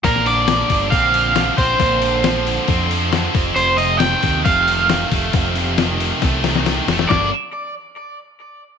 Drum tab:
HH |o-o-o-o-o-o-o-o-|o-o-o-o-o-o-o-o-|o-o-o-o-o-o-o-o-|o-o-o-o-o-o-o-o-|
SD |-o--o-------o---|----o-------o---|----o-------o---|----o---o-ooo-oo|
BD |o-----o-o-----o-|o-------o-----o-|------o-o-----o-|o-------o-------|

HH |----------------|
SD |o---------------|
BD |o---------------|